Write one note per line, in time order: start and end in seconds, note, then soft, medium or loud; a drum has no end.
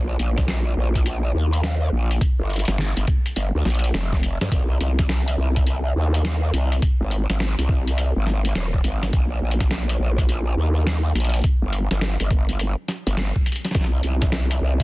0.00 0.18 A#1 loud
0.19 0.75 A#1 medium
0.19 closed hi-hat soft
0.38 kick loud
0.38 snare medium
0.38 closed hi-hat medium
0.48 snare loud
0.77 1.33 A#1 medium
0.95 kick medium
0.95 closed hi-hat soft
1.06 closed hi-hat medium
1.34 1.90 D#2 medium
1.53 closed hi-hat soft
1.64 snare loud
1.64 closed hi-hat medium
1.92 2.19 A#1 medium
2.11 closed hi-hat medium
2.21 kick loud
2.21 closed hi-hat medium
2.39 2.65 G1 medium
2.50 closed hi-hat soft
2.53 closed hi-hat soft
2.56 closed hi-hat soft
2.59 closed hi-hat soft
2.65 snare medium
2.65 closed hi-hat soft
2.68 2.94 G1 loud
2.68 closed hi-hat medium
2.78 snare loud
2.97 3.06 G1 loud
2.97 closed hi-hat medium
3.07 kick loud
3.07 closed hi-hat soft
3.26 closed hi-hat soft
3.36 3.52 G1 loud
3.36 closed hi-hat medium
3.55 3.64 D2 loud
3.65 3.92 A#1 loud
3.65 snare soft
3.65 closed hi-hat soft
3.70 closed hi-hat soft
3.75 closed hi-hat soft
3.79 closed hi-hat soft
3.84 closed hi-hat medium
3.94 4.38 F1 loud
3.94 snare loud
3.94 closed hi-hat medium
4.13 kick medium
4.13 snare soft
4.23 closed hi-hat medium
4.41 4.50 G2 loud
4.41 snare medium
4.52 4.79 C2 medium
4.52 kick loud
4.52 closed hi-hat medium
4.80 5.37 C2 medium
4.80 closed hi-hat soft
4.99 kick loud
4.99 snare medium
4.99 closed hi-hat medium
5.09 snare loud
5.28 closed hi-hat medium
5.38 5.94 C2 medium
5.56 kick medium
5.56 closed hi-hat medium
5.67 closed hi-hat medium
5.96 6.52 D#2 loud
6.14 closed hi-hat medium
6.25 snare loud
6.25 closed hi-hat medium
6.53 6.81 C2 medium
6.53 closed hi-hat medium
6.72 closed hi-hat medium
6.82 kick loud
6.82 closed hi-hat medium
7.01 7.27 G#1 loud
7.11 closed hi-hat soft
7.30 7.56 G#1 loud
7.30 snare medium
7.30 closed hi-hat medium
7.40 snare loud
7.58 8.13 C2 loud
7.58 closed hi-hat medium
7.69 kick loud
7.87 closed hi-hat medium
7.98 closed hi-hat medium
8.16 8.54 G#1 medium
8.27 snare soft
8.45 closed hi-hat medium
8.55 8.83 D#1 medium
8.55 snare loud
8.55 closed hi-hat medium
8.74 kick medium
8.84 9.11 G#1 medium
8.84 closed hi-hat medium
9.03 snare medium
9.03 closed hi-hat medium
9.13 9.40 A#1 loud
9.13 kick loud
9.13 closed hi-hat medium
9.42 9.98 A#1 loud
9.51 closed hi-hat soft
9.60 kick loud
9.60 snare medium
9.60 closed hi-hat medium
9.71 snare loud
9.89 closed hi-hat medium
9.99 10.56 A#1 loud
10.18 kick medium
10.18 closed hi-hat medium
10.29 closed hi-hat medium
10.57 11.13 D#2 loud
10.87 snare loud
10.87 closed hi-hat medium
11.15 11.42 A#1 medium
11.15 closed hi-hat medium
11.20 closed hi-hat soft
11.25 closed hi-hat soft
11.29 closed hi-hat soft
11.34 closed hi-hat medium
11.36 closed hi-hat soft
11.39 closed hi-hat soft
11.42 closed hi-hat soft
11.44 kick loud
11.44 closed hi-hat medium
11.62 11.88 G1 loud
11.73 closed hi-hat soft
11.91 12.17 G1 loud
11.91 snare soft
11.91 closed hi-hat soft
12.01 snare loud
12.20 12.75 G1 loud
12.20 closed hi-hat medium
12.31 kick loud
12.31 closed hi-hat soft
12.49 closed hi-hat soft
12.59 closed hi-hat medium
12.88 snare soft
12.88 closed hi-hat soft
13.07 13.33 G1 medium
13.07 closed hi-hat medium
13.17 snare loud
13.17 closed hi-hat medium
13.36 kick medium
13.46 closed hi-hat medium
13.52 closed hi-hat soft
13.56 closed hi-hat soft
13.65 snare soft
13.65 closed hi-hat medium
13.71 snare soft
13.75 14.02 C2 loud
13.75 kick loud
13.75 snare soft
13.75 closed hi-hat medium
13.81 snare soft
13.84 snare soft
14.03 14.60 C2 medium
14.03 closed hi-hat soft
14.22 kick loud
14.22 snare soft
14.22 closed hi-hat soft
14.32 snare loud
14.51 closed hi-hat medium
14.61 14.83 C2 medium
14.80 kick medium
14.80 closed hi-hat soft